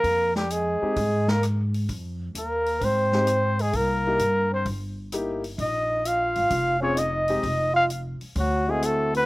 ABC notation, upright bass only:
X:1
M:4/4
L:1/8
Q:"Swing" 1/4=130
K:Fm
V:1 name="Upright bass" clef=bass
F,,3 z A,,4 | F,,2 E,,2 A,,4 | C,,2 G,,2 G,,,4 | B,,,3 A,,, F,,,4 |
F,,,3 z =D,,4 |]